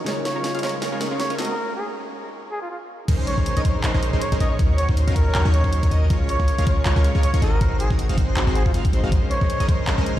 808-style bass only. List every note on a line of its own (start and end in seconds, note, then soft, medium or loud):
3.08 3.36 A#1 medium
3.38 3.54 A#1 loud
3.57 3.63 A#1 medium
3.65 3.82 A#1 loud
3.84 3.92 A#1 loud
3.94 4.11 A#1 loud
4.13 4.30 A#1 loud
4.32 4.39 A#1 loud
4.40 4.61 A#1 loud
4.59 4.87 D#2 loud
4.89 5.05 D#2 loud
5.07 5.14 D#2 loud
5.16 5.33 D#2 loud
5.35 5.43 D#2 loud
5.45 5.62 D#2 loud
5.64 5.81 D#2 loud
5.83 5.90 D#2 loud
5.91 6.08 D#2 medium
6.10 6.38 C#2 medium
6.40 6.56 C#2 loud
6.58 6.65 C#2 medium
6.67 6.84 C#2 loud
6.85 6.94 C#2 loud
6.96 7.13 C#2 loud
7.15 7.32 C#2 loud
7.34 7.40 C#2 loud
7.42 7.59 G#1 loud
7.61 7.88 G#1 medium
7.90 8.07 G#1 loud
8.09 8.16 G#1 medium
8.18 8.35 G#1 loud
8.36 8.45 G#1 loud
8.47 8.64 G#1 loud
8.66 8.73 G#1 loud
8.74 8.91 G#1 medium
8.93 9.02 G#1 loud
9.04 9.13 G#1 loud
9.12 9.39 A#1 loud
9.41 9.58 A#1 loud
9.60 9.67 A#1 loud
9.69 9.86 A#1 loud
9.87 9.96 A#1 loud
9.98 10.15 A#1 loud